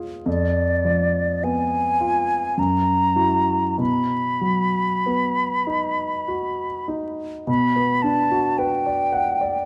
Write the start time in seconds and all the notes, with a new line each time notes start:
Already playing: B2 B3 F4 G#4
0.26 F2 D5
0.85 F3
1.43 B3 G#5
2.00 F4
2.57 F#2 A#5
3.16 E4 F#4
3.78 B2 B5
4.41 F#3
5.06 B3
5.67 D#4
6.28 F#4
6.88 D#4
7.47 B2 B5
7.76 B3
8.02 D4 A5
8.31 F#4
8.58 B4 G5
8.86 D5
9.12 F#5
9.41 D5